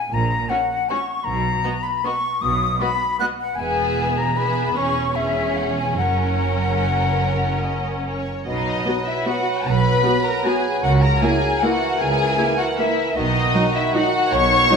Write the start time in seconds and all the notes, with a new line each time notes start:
Already playing: G#5
0.11 A#1 A#2 A#5
0.50 C#4 F#4 C#5 F#5
0.90 C#4 F#4 C#5 C#6
1.26 B1 B2 A#5
1.64 B3 F#4 D#5
1.83 B5
2.04 B3 F#4 D#5 C#6
2.42 B1 B2 D#6
2.80 B3 F#4 D#5 B5
3.19 B3 F#4 D#5 F#6
3.39 F#5
3.56 E1 E2 B3 G#4 E5 G#5
4.17 A#5
4.36 B3 G#4 E5 B5
4.74 E1 E2 C#4 G#4 C#5 C#6
5.12 C#4 G#4 C#5 E5
5.55 F#5
5.77 G#5
5.95 F#1 F#2 C#4 A#4 C#5 F#5
6.37 A#4
7.00 B4
7.21 C#5
7.62 D#5
8.05 C#5
8.46 B1 B2 F#3 D#4 B4 D#5
8.85 B3 F#4
9.06 E4 E5
9.25 B3 F#4 F#5
9.64 B1 B2 B4 B5
10.02 B3 F#4
10.23 A#4 A#5
10.43 B3 F#4 G#4 G#5
10.83 C#2 C#3 F#4 A#4 F#5
11.02 A#4 A#5
11.21 A#3 E4 G#4 G#5
11.62 E3 A#3 E4 F#4 F#5
11.99 C#2 C#3 G#4 G#5
12.38 A#3 E4
12.57 F#4 F#5
12.77 A#3 E4 E5
13.16 B1 B2 D#3 D#4 F#4 D#5
13.54 F#3 D#4
13.74 E4 E5
13.94 F#3 D#4 F#4 F#5
14.31 B1 B2 C#5 C#6
14.69 F#3 D#4